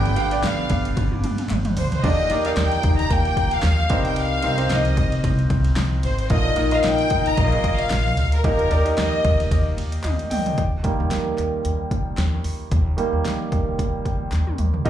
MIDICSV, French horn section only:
0, 0, Header, 1, 2, 480
1, 0, Start_track
1, 0, Key_signature, -3, "major"
1, 0, Tempo, 534283
1, 1831, Time_signature, 4, 2, 24, 8
1, 13385, End_track
2, 0, Start_track
2, 0, Title_t, "French horn section"
2, 0, Program_c, 0, 60
2, 1825, Note_on_c, 0, 50, 92
2, 1830, Note_on_c, 0, 62, 105
2, 2019, Note_off_c, 0, 50, 0
2, 2022, Note_off_c, 0, 62, 0
2, 2061, Note_on_c, 0, 51, 79
2, 2061, Note_on_c, 0, 63, 94
2, 2516, Note_off_c, 0, 51, 0
2, 2516, Note_off_c, 0, 63, 0
2, 2538, Note_on_c, 0, 63, 93
2, 2540, Note_on_c, 0, 51, 75
2, 2735, Note_off_c, 0, 63, 0
2, 2736, Note_off_c, 0, 51, 0
2, 2777, Note_on_c, 0, 46, 90
2, 2777, Note_on_c, 0, 58, 92
2, 3466, Note_off_c, 0, 58, 0
2, 3467, Note_off_c, 0, 46, 0
2, 5665, Note_on_c, 0, 62, 98
2, 5666, Note_on_c, 0, 50, 89
2, 5857, Note_off_c, 0, 62, 0
2, 5858, Note_off_c, 0, 50, 0
2, 5910, Note_on_c, 0, 63, 107
2, 5912, Note_on_c, 0, 51, 84
2, 6359, Note_off_c, 0, 63, 0
2, 6360, Note_off_c, 0, 51, 0
2, 6388, Note_on_c, 0, 63, 101
2, 6392, Note_on_c, 0, 51, 87
2, 6579, Note_off_c, 0, 63, 0
2, 6581, Note_off_c, 0, 51, 0
2, 6636, Note_on_c, 0, 46, 102
2, 6637, Note_on_c, 0, 58, 120
2, 7315, Note_off_c, 0, 46, 0
2, 7315, Note_off_c, 0, 58, 0
2, 13385, End_track
0, 0, End_of_file